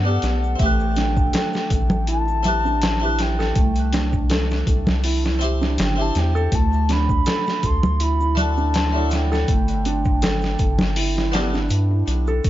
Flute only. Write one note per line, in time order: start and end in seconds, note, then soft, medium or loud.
0.00 0.64 F#5 medium
0.62 1.72 G5 loud
1.74 2.07 G5 medium
2.10 3.23 A5 loud
3.21 4.31 G5 loud
5.81 6.03 G5 medium
6.01 6.20 A5 medium
6.18 6.56 G5 medium
6.55 6.93 A5 loud
6.92 7.67 B5 loud
7.65 8.04 C6 loud
8.03 8.38 B5 loud
8.39 9.08 A5 loud
9.13 11.30 G5 medium